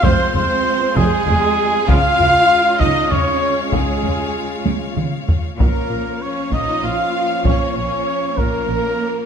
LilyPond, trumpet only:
\new Staff \with { instrumentName = "Trumpet" } { \time 6/8 \key des \lydian \tempo 4. = 65 c''8 c''4 aes'4. | f''4. ees''8 des''4 | aes'4. r4. | bes'4 des''8 ees''8 f''4 |
des''8 des''4 bes'4. | }